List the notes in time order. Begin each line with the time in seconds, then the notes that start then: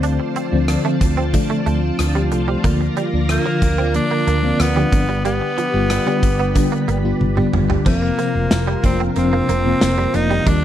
Already playing: D2 D3 F3 A3 C4 F4 C5 D5 A5
0.03 D4, closed hi-hat
0.20 muted clean electric guitar stroke
0.36 C4, closed hi-hat
0.52 D2 D3 F3 A3 C4
0.68 cross-stick, closed hi-hat
0.85 D3 F3 A3 C4
1.01 D2, muted clean electric guitar stroke, kick, closed hi-hat
1.17 C4
1.33 D3 F3 A3 D4, muted clean electric guitar stroke, kick, closed hi-hat
1.50 A3
1.66 D2 A3, closed hi-hat
1.99 D2 C4 F4, cross-stick, closed hi-hat
2.15 G3 D4 G4
2.32 C2 D4 A4, muted clean electric guitar stroke, closed hi-hat
2.48 G3 G4 C5
2.64 D2 D3 F3 A#3 D4 A#4 D5 A#5, kick, closed hi-hat
2.81 muted clean electric guitar stroke
2.97 G3, closed hi-hat
3.13 D2 D3 F3 A#3 D4
3.29 A#3, cross-stick, closed hi-hat
3.46 D3 F3 A#3 F4
3.62 D2, muted clean electric guitar stroke, kick, closed hi-hat
3.78 C4
3.94 D3 F3 A#3 D4, muted clean electric guitar stroke, closed hi-hat
4.11 A#3
4.27 D2 A#3, closed hi-hat
4.43 D3 F3 A#3 C4
4.60 D2 B3, cross-stick, closed hi-hat
4.75 D3 F3 G3 A#3 D4
4.92 G1 D3 G3 B3 D4 G4 B4 B5, muted clean electric guitar stroke, kick, closed hi-hat
5.09 G3
5.25 G3 B3, closed hi-hat
5.41 muted clean electric guitar stroke
5.58 F3, closed hi-hat
5.74 G1 D3 G3 B3 F4
5.90 cross-stick, closed hi-hat
6.06 D3 G3 B3 D4
6.23 G1, muted clean electric guitar stroke, kick, closed hi-hat
6.40 B3
6.55 D3 G3 B3 D4, muted clean electric guitar stroke, kick, closed hi-hat
6.72 A#3
6.88 G1 A#3, closed hi-hat
7.04 D3 G3 B3 F4
7.21 G1, high tom
7.37 D3 G3 B3 D4, mid tom
7.53 G1, muted clean electric guitar stroke, mid tom
7.70 G3, floor tom
7.85 F1 C3 F3 A#3 C4 F4 A#4 C5 A#5, kick, crash, tambourine
8.02 muted clean electric guitar stroke
8.18 C3 F3 A#3 C4, closed hi-hat, tambourine
8.35 F1
8.51 F1, snare, closed hi-hat, tambourine
8.67 G3
8.83 F1 C3 F3 A#3 C4 D4, muted clean electric guitar stroke, kick, closed hi-hat, tambourine
9.00 C4
9.15 F1 C3 F3 A#3 C4, muted clean electric guitar stroke, closed hi-hat, tambourine
9.33 A#3
9.49 F1 A#3, closed hi-hat, tambourine
9.65 C3 F3 A#3 C4
9.81 F1, snare, closed hi-hat, tambourine
9.98 G3
10.13 F1 C3 F3 A#3 D4 D#4, muted clean electric guitar stroke, closed hi-hat, tambourine
10.30 G3, tambourine
10.46 D#2 D#3 G3 A#3 D4 D#4 G4 D5 G5, kick, closed hi-hat, tambourine